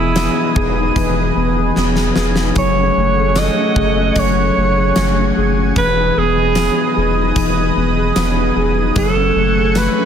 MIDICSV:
0, 0, Header, 1, 6, 480
1, 0, Start_track
1, 0, Tempo, 800000
1, 1537, Time_signature, 4, 2, 24, 8
1, 6031, End_track
2, 0, Start_track
2, 0, Title_t, "Analog synth pad"
2, 0, Program_c, 0, 89
2, 0, Note_on_c, 0, 71, 79
2, 0, Note_on_c, 0, 75, 64
2, 0, Note_on_c, 0, 80, 66
2, 0, Note_on_c, 0, 87, 87
2, 1517, Note_off_c, 0, 71, 0
2, 1517, Note_off_c, 0, 75, 0
2, 1518, Note_off_c, 0, 87, 0
2, 1537, Note_on_c, 0, 57, 75
2, 1539, Note_on_c, 0, 78, 66
2, 1539, Note_on_c, 0, 85, 76
2, 3438, Note_off_c, 0, 57, 0
2, 3439, Note_off_c, 0, 78, 0
2, 3439, Note_off_c, 0, 85, 0
2, 3456, Note_on_c, 0, 87, 87
2, 3457, Note_on_c, 0, 71, 74
2, 3458, Note_on_c, 0, 75, 64
2, 5355, Note_off_c, 0, 80, 0
2, 5357, Note_off_c, 0, 87, 0
2, 5358, Note_off_c, 0, 71, 0
2, 5359, Note_off_c, 0, 75, 0
2, 5377, Note_on_c, 0, 80, 71
2, 5378, Note_on_c, 0, 57, 68
2, 5378, Note_on_c, 0, 85, 82
2, 5380, Note_on_c, 0, 78, 72
2, 6031, Note_off_c, 0, 57, 0
2, 6031, Note_off_c, 0, 78, 0
2, 6031, Note_off_c, 0, 80, 0
2, 6031, Note_off_c, 0, 85, 0
2, 6031, End_track
3, 0, Start_track
3, 0, Title_t, "Alto saxophone"
3, 0, Program_c, 1, 65
3, 0, Note_on_c, 1, 64, 95
3, 343, Note_off_c, 1, 64, 0
3, 1550, Note_on_c, 1, 73, 102
3, 2030, Note_on_c, 1, 75, 110
3, 2038, Note_off_c, 1, 73, 0
3, 2515, Note_on_c, 1, 73, 97
3, 2524, Note_off_c, 1, 75, 0
3, 3226, Note_off_c, 1, 73, 0
3, 3466, Note_on_c, 1, 71, 114
3, 3709, Note_on_c, 1, 68, 104
3, 3718, Note_off_c, 1, 71, 0
3, 4183, Note_off_c, 1, 68, 0
3, 5391, Note_on_c, 1, 69, 94
3, 5865, Note_on_c, 1, 71, 94
3, 5874, Note_off_c, 1, 69, 0
3, 6031, Note_off_c, 1, 71, 0
3, 6031, End_track
4, 0, Start_track
4, 0, Title_t, "Clean electric guitar"
4, 0, Program_c, 2, 27
4, 0, Note_on_c, 2, 52, 82
4, 0, Note_on_c, 2, 59, 60
4, 0, Note_on_c, 2, 68, 63
4, 91, Note_off_c, 2, 59, 0
4, 98, Note_on_c, 2, 59, 68
4, 220, Note_on_c, 2, 63, 57
4, 334, Note_off_c, 2, 68, 0
4, 336, Note_on_c, 2, 68, 67
4, 448, Note_off_c, 2, 63, 0
4, 455, Note_on_c, 2, 63, 58
4, 571, Note_off_c, 2, 52, 0
4, 578, Note_on_c, 2, 52, 75
4, 691, Note_off_c, 2, 63, 0
4, 698, Note_on_c, 2, 63, 58
4, 812, Note_off_c, 2, 59, 0
4, 819, Note_on_c, 2, 59, 65
4, 934, Note_off_c, 2, 68, 0
4, 937, Note_on_c, 2, 68, 63
4, 1051, Note_off_c, 2, 59, 0
4, 1058, Note_on_c, 2, 59, 64
4, 1172, Note_off_c, 2, 63, 0
4, 1179, Note_on_c, 2, 63, 55
4, 1296, Note_off_c, 2, 68, 0
4, 1299, Note_on_c, 2, 68, 68
4, 1412, Note_off_c, 2, 63, 0
4, 1420, Note_on_c, 2, 63, 53
4, 1536, Note_off_c, 2, 52, 0
4, 1538, Note_on_c, 2, 54, 77
4, 1585, Note_off_c, 2, 59, 0
4, 1586, Note_off_c, 2, 63, 0
4, 1660, Note_on_c, 2, 61, 56
4, 1782, Note_on_c, 2, 57, 58
4, 1800, Note_off_c, 2, 68, 0
4, 1900, Note_on_c, 2, 68, 61
4, 2012, Note_off_c, 2, 57, 0
4, 2019, Note_on_c, 2, 57, 68
4, 2132, Note_off_c, 2, 61, 0
4, 2139, Note_on_c, 2, 61, 58
4, 2255, Note_off_c, 2, 68, 0
4, 2257, Note_on_c, 2, 68, 65
4, 2373, Note_off_c, 2, 61, 0
4, 2380, Note_on_c, 2, 61, 57
4, 2489, Note_off_c, 2, 54, 0
4, 2497, Note_on_c, 2, 54, 80
4, 2610, Note_off_c, 2, 61, 0
4, 2617, Note_on_c, 2, 61, 64
4, 2728, Note_off_c, 2, 57, 0
4, 2736, Note_on_c, 2, 57, 61
4, 2853, Note_off_c, 2, 68, 0
4, 2855, Note_on_c, 2, 68, 62
4, 2969, Note_off_c, 2, 57, 0
4, 2976, Note_on_c, 2, 57, 57
4, 3086, Note_off_c, 2, 61, 0
4, 3093, Note_on_c, 2, 61, 58
4, 3218, Note_off_c, 2, 68, 0
4, 3220, Note_on_c, 2, 68, 68
4, 3331, Note_off_c, 2, 61, 0
4, 3338, Note_on_c, 2, 61, 54
4, 3457, Note_off_c, 2, 54, 0
4, 3460, Note_on_c, 2, 52, 81
4, 3505, Note_off_c, 2, 57, 0
4, 3506, Note_off_c, 2, 61, 0
4, 3579, Note_on_c, 2, 63, 54
4, 3699, Note_on_c, 2, 59, 60
4, 3818, Note_off_c, 2, 68, 0
4, 3821, Note_on_c, 2, 68, 64
4, 3932, Note_off_c, 2, 59, 0
4, 3939, Note_on_c, 2, 59, 70
4, 4053, Note_off_c, 2, 63, 0
4, 4060, Note_on_c, 2, 63, 59
4, 4175, Note_off_c, 2, 68, 0
4, 4177, Note_on_c, 2, 68, 68
4, 4293, Note_off_c, 2, 63, 0
4, 4300, Note_on_c, 2, 63, 60
4, 4412, Note_off_c, 2, 52, 0
4, 4419, Note_on_c, 2, 52, 82
4, 4532, Note_off_c, 2, 63, 0
4, 4539, Note_on_c, 2, 63, 62
4, 4651, Note_off_c, 2, 59, 0
4, 4658, Note_on_c, 2, 59, 63
4, 4776, Note_off_c, 2, 68, 0
4, 4779, Note_on_c, 2, 68, 67
4, 4890, Note_off_c, 2, 59, 0
4, 4897, Note_on_c, 2, 59, 62
4, 5008, Note_off_c, 2, 63, 0
4, 5015, Note_on_c, 2, 63, 57
4, 5135, Note_off_c, 2, 68, 0
4, 5137, Note_on_c, 2, 68, 70
4, 5249, Note_off_c, 2, 63, 0
4, 5256, Note_on_c, 2, 63, 58
4, 5373, Note_off_c, 2, 52, 0
4, 5375, Note_on_c, 2, 54, 85
4, 5425, Note_off_c, 2, 59, 0
4, 5425, Note_off_c, 2, 63, 0
4, 5498, Note_on_c, 2, 61, 56
4, 5619, Note_on_c, 2, 57, 62
4, 5637, Note_off_c, 2, 68, 0
4, 5739, Note_on_c, 2, 68, 60
4, 5854, Note_off_c, 2, 57, 0
4, 5862, Note_on_c, 2, 57, 70
4, 5972, Note_off_c, 2, 61, 0
4, 5979, Note_on_c, 2, 61, 64
4, 6031, Note_off_c, 2, 54, 0
4, 6031, Note_off_c, 2, 57, 0
4, 6031, Note_off_c, 2, 61, 0
4, 6031, Note_off_c, 2, 68, 0
4, 6031, End_track
5, 0, Start_track
5, 0, Title_t, "Sub bass"
5, 0, Program_c, 3, 38
5, 0, Note_on_c, 3, 28, 101
5, 174, Note_off_c, 3, 28, 0
5, 337, Note_on_c, 3, 28, 95
5, 548, Note_off_c, 3, 28, 0
5, 577, Note_on_c, 3, 28, 96
5, 788, Note_off_c, 3, 28, 0
5, 819, Note_on_c, 3, 28, 101
5, 1029, Note_off_c, 3, 28, 0
5, 1062, Note_on_c, 3, 28, 97
5, 1271, Note_off_c, 3, 28, 0
5, 1300, Note_on_c, 3, 28, 86
5, 1510, Note_off_c, 3, 28, 0
5, 1537, Note_on_c, 3, 30, 104
5, 1748, Note_off_c, 3, 30, 0
5, 1782, Note_on_c, 3, 30, 96
5, 2097, Note_off_c, 3, 30, 0
5, 2258, Note_on_c, 3, 30, 92
5, 2469, Note_off_c, 3, 30, 0
5, 2497, Note_on_c, 3, 30, 95
5, 2708, Note_off_c, 3, 30, 0
5, 2744, Note_on_c, 3, 30, 108
5, 2952, Note_off_c, 3, 30, 0
5, 2985, Note_on_c, 3, 30, 107
5, 3193, Note_off_c, 3, 30, 0
5, 3226, Note_on_c, 3, 30, 88
5, 3434, Note_off_c, 3, 30, 0
5, 3459, Note_on_c, 3, 28, 112
5, 3669, Note_off_c, 3, 28, 0
5, 3702, Note_on_c, 3, 28, 105
5, 4017, Note_off_c, 3, 28, 0
5, 4184, Note_on_c, 3, 28, 95
5, 4392, Note_off_c, 3, 28, 0
5, 4416, Note_on_c, 3, 28, 90
5, 4628, Note_off_c, 3, 28, 0
5, 4661, Note_on_c, 3, 28, 109
5, 4871, Note_off_c, 3, 28, 0
5, 4898, Note_on_c, 3, 28, 105
5, 5109, Note_off_c, 3, 28, 0
5, 5137, Note_on_c, 3, 28, 85
5, 5348, Note_off_c, 3, 28, 0
5, 5378, Note_on_c, 3, 30, 110
5, 5589, Note_off_c, 3, 30, 0
5, 5613, Note_on_c, 3, 30, 102
5, 5932, Note_off_c, 3, 30, 0
5, 6031, End_track
6, 0, Start_track
6, 0, Title_t, "Drums"
6, 94, Note_on_c, 9, 42, 78
6, 96, Note_on_c, 9, 38, 109
6, 97, Note_on_c, 9, 54, 67
6, 154, Note_off_c, 9, 42, 0
6, 156, Note_off_c, 9, 38, 0
6, 157, Note_off_c, 9, 54, 0
6, 336, Note_on_c, 9, 36, 96
6, 396, Note_off_c, 9, 36, 0
6, 576, Note_on_c, 9, 36, 85
6, 576, Note_on_c, 9, 42, 73
6, 636, Note_off_c, 9, 36, 0
6, 636, Note_off_c, 9, 42, 0
6, 1057, Note_on_c, 9, 38, 52
6, 1117, Note_off_c, 9, 38, 0
6, 1174, Note_on_c, 9, 38, 63
6, 1234, Note_off_c, 9, 38, 0
6, 1294, Note_on_c, 9, 38, 89
6, 1354, Note_off_c, 9, 38, 0
6, 1414, Note_on_c, 9, 38, 88
6, 1474, Note_off_c, 9, 38, 0
6, 1533, Note_on_c, 9, 42, 73
6, 1537, Note_on_c, 9, 36, 101
6, 1593, Note_off_c, 9, 42, 0
6, 1597, Note_off_c, 9, 36, 0
6, 2013, Note_on_c, 9, 42, 77
6, 2016, Note_on_c, 9, 38, 107
6, 2017, Note_on_c, 9, 54, 68
6, 2073, Note_off_c, 9, 42, 0
6, 2076, Note_off_c, 9, 38, 0
6, 2077, Note_off_c, 9, 54, 0
6, 2257, Note_on_c, 9, 36, 96
6, 2317, Note_off_c, 9, 36, 0
6, 2494, Note_on_c, 9, 42, 78
6, 2496, Note_on_c, 9, 36, 82
6, 2554, Note_off_c, 9, 42, 0
6, 2556, Note_off_c, 9, 36, 0
6, 2974, Note_on_c, 9, 42, 59
6, 2975, Note_on_c, 9, 54, 63
6, 2976, Note_on_c, 9, 38, 110
6, 3034, Note_off_c, 9, 42, 0
6, 3035, Note_off_c, 9, 54, 0
6, 3036, Note_off_c, 9, 38, 0
6, 3456, Note_on_c, 9, 42, 72
6, 3458, Note_on_c, 9, 36, 106
6, 3516, Note_off_c, 9, 42, 0
6, 3518, Note_off_c, 9, 36, 0
6, 3932, Note_on_c, 9, 42, 75
6, 3934, Note_on_c, 9, 38, 113
6, 3936, Note_on_c, 9, 54, 64
6, 3992, Note_off_c, 9, 42, 0
6, 3994, Note_off_c, 9, 38, 0
6, 3996, Note_off_c, 9, 54, 0
6, 4415, Note_on_c, 9, 42, 81
6, 4416, Note_on_c, 9, 36, 81
6, 4475, Note_off_c, 9, 42, 0
6, 4476, Note_off_c, 9, 36, 0
6, 4895, Note_on_c, 9, 42, 60
6, 4896, Note_on_c, 9, 54, 62
6, 4897, Note_on_c, 9, 38, 114
6, 4955, Note_off_c, 9, 42, 0
6, 4956, Note_off_c, 9, 54, 0
6, 4957, Note_off_c, 9, 38, 0
6, 5374, Note_on_c, 9, 42, 76
6, 5377, Note_on_c, 9, 36, 103
6, 5434, Note_off_c, 9, 42, 0
6, 5437, Note_off_c, 9, 36, 0
6, 5851, Note_on_c, 9, 42, 77
6, 5853, Note_on_c, 9, 38, 116
6, 5855, Note_on_c, 9, 54, 69
6, 5911, Note_off_c, 9, 42, 0
6, 5913, Note_off_c, 9, 38, 0
6, 5915, Note_off_c, 9, 54, 0
6, 6031, End_track
0, 0, End_of_file